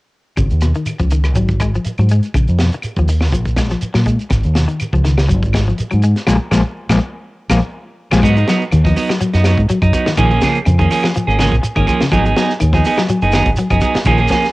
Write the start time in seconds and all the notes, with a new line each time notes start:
0.37 G#1 C#3, kick, closed hi-hat, claves, shekere
0.50 D#2, closed hi-hat, shekere
0.61 B2, cross-stick, closed hi-hat, shekere
0.75 D#3, closed hi-hat, shekere
0.86 closed hi-hat, claves, shekere
0.99 C#2 F3, kick, shekere
1.10 D#3, closed hi-hat, shekere
1.24 cross-stick, closed hi-hat, claves, shekere
1.35 G#1 F#3, kick, closed hi-hat, shekere
1.48 kick, closed hi-hat, shekere
1.60 G#3, kick, cross-stick, closed hi-hat, claves, shekere
1.75 F3, shekere
1.85 muted fingered electric bass stroke, closed hi-hat, shekere
1.98 G#2 F#3, closed hi-hat, claves, shekere
2.09 G#3, closed hi-hat, shekere
2.23 closed hi-hat, shekere
2.34 A#1 C#3, kick, closed hi-hat, claves, shekere
2.48 F2, closed hi-hat, shekere
2.59 B2, snare, closed hi-hat, shekere
2.72 muted clean electric guitar stroke, closed hi-hat, shekere
2.82 closed hi-hat, claves, shekere
2.96 D#2 F3, kick, closed hi-hat, shekere
3.08 D#3, open hi-hat, shekere
3.21 snare, claves, shekere
3.32 A#1 F3, kick, closed hi-hat, shekere
3.45 kick, closed hi-hat, shekere
3.56 G#3, kick, snare, closed hi-hat, claves, shekere
3.70 F3, snare, closed hi-hat, shekere
3.81 muted fingered electric bass stroke, closed hi-hat, shekere
3.94 A#2 F#3, snare, claves, shekere
4.06 G#3, kick, closed hi-hat, shekere
4.19 closed hi-hat, shekere
4.30 G#1, muted clean electric guitar stroke, kick, snare, closed hi-hat, claves, shekere
4.43 D#2, closed hi-hat, shekere
4.55 B2, snare, closed hi-hat, shekere
4.68 D#3, closed hi-hat, shekere
4.80 closed hi-hat, claves, shekere
4.93 C#2 F3, kick, shekere
5.05 D#3, snare, closed hi-hat, shekere
5.18 snare, closed hi-hat, claves, shekere
5.29 G#1 F#3, kick, closed hi-hat, shekere
5.43 kick, closed hi-hat, shekere
5.53 G#3, kick, snare, closed hi-hat, claves, shekere
5.68 F3, shekere
5.78 muted fingered electric bass stroke, closed hi-hat, shekere
5.91 G#2 F#3, closed hi-hat, claves, shekere
6.02 G#3, closed hi-hat, shekere
6.16 snare, closed hi-hat, shekere
6.27 A#1 F3 G#3 A#3, kick, snare, claves, shekere
6.51 A#1 F3 G#3 A#3, kick, snare, claves, shekere
6.89 A#1 F3 G#3 A#3, kick, snare, claves, shekere
7.50 A#1 F3 G#3 A#3, kick, snare, claves, shekere
8.11 A#1 F3 G#3 A#3, kick, snare, claves, shekere
8.22 G#2 F#3 G#3 B3 D#4, kick, crash, claves, shekere
8.37 D#4, closed hi-hat, shekere
8.47 F#3 B3 D#4, snare, closed hi-hat, shekere
8.62 shekere
8.72 D#2 D#3, closed hi-hat, claves, shekere
8.84 F3 B3 D#4, kick, snare, shekere
8.96 F#3 B3 D#4, open hi-hat, shekere
9.09 F#3, snare, closed hi-hat, claves, shekere
9.21 F#3, closed hi-hat, shekere
9.34 F#2 B3 D#4, snare, closed hi-hat, shekere
9.44 F#3 B3 D#4, snare, closed hi-hat, claves, shekere
9.57 G#2, kick, closed hi-hat, shekere
9.69 F#3, muted fingered electric bass stroke, closed hi-hat, shekere
9.82 F#2 D#4, muted clean electric guitar stroke, kick, closed hi-hat, claves, shekere
9.93 F#3 B3 D#4, kick, closed hi-hat, shekere
10.06 D#3, muted fingered electric bass stroke, snare, shekere
10.17 A#1 D#3 F3 A#3 C#4 G#4, kick, closed hi-hat, claves, shekere
10.30 A#3 C#4 G#4, shekere
10.41 C#3 F3 A#3 C#4 G#4, kick, snare, closed hi-hat, shekere
10.55 closed hi-hat, shekere
10.65 F2 C#3, closed hi-hat, claves, shekere
10.79 D#3 A#3 C#4 G#4, kick, closed hi-hat, shekere
10.90 F3 A#3 C#4 G#4, open hi-hat, shekere
11.03 F3, snare, closed hi-hat, claves, shekere
11.14 F3, closed hi-hat, shekere
11.27 G#1 A#3 C#4 G#4, shekere
11.39 C#3 F3 A#3 C#4 G#4, snare, closed hi-hat, claves, shekere
11.52 A#1, kick, closed hi-hat, shekere
11.63 muted clean electric guitar stroke, closed hi-hat, shekere
11.76 G#1 D#3 A#3 C#4 G#4, kick, closed hi-hat, claves, shekere
11.87 F3 A#3 C#4 G#4, kick, closed hi-hat, shekere
12.01 C#3, muted fingered electric bass stroke, snare, shekere
12.12 G#1 F3 F#3 B3 D#4 G#4, kick, closed hi-hat, claves, shekere
12.25 B3 D#4 G#4, closed hi-hat, shekere
12.36 F#3 B3 D#4 G#4, snare, closed hi-hat, shekere
12.49 snare, shekere
12.60 D#2 D#3, closed hi-hat, claves, shekere
12.73 F3 B3 D#4 G#4, kick, snare, shekere
12.84 B3 D#4 G#4, muted clean electric guitar stroke, open hi-hat, shekere
12.98 F#3, snare, closed hi-hat, claves, shekere
13.09 F#3, closed hi-hat, shekere
13.21 F#1 B3 D#4 G#4, closed hi-hat, shekere
13.32 D#3 F#3 B3 D#4 G#4, snare, closed hi-hat, claves, shekere
13.45 G#1, kick, closed hi-hat, shekere
13.56 F#3, closed hi-hat, shekere
13.70 F#1 F3 B3 D#4 G#4, kick, closed hi-hat, claves, shekere
13.81 F#3 B3 D#4 G#4, kick, closed hi-hat, shekere
13.94 muted clean electric guitar stroke, muted fingered electric bass stroke, snare, shekere
14.05 A#1 D#3 F3 A#3 C#4 G#4, kick, closed hi-hat, claves, shekere
14.18 A#3 C#4 G#4, shekere
14.28 F3 A#3 C#4 G#4, muted clean electric guitar stroke, kick, snare, closed hi-hat, shekere
14.42 snare, closed hi-hat, shekere